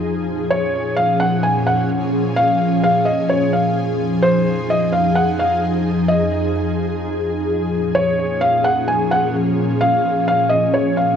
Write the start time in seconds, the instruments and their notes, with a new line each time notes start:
0.04 ambient pad A#2 F3 C#4 G#4
0.51 felt piano C#5
0.97 felt piano F5
1.20 felt piano F#5
1.43 felt piano G#5
1.67 felt piano F#5
2.36 felt piano F5
2.84 felt piano F5
3.05 felt piano D#5
3.30 felt piano C#5
3.53 felt piano F5
3.76 ambient pad F2 D#4
4.23 felt piano C5
4.70 felt piano D#5
4.93 felt piano F5
5.15 felt piano F#5
5.39 felt piano F5
6.08 felt piano D#5
7.48 ambient pad A#2 F3 C#4
7.95 felt piano C#5
8.41 felt piano F5
8.64 felt piano F#5
8.88 felt piano G#5
9.11 felt piano F#5
9.81 felt piano F5
10.28 felt piano F5
10.49 felt piano D#5
10.74 felt piano C#5
10.97 felt piano F5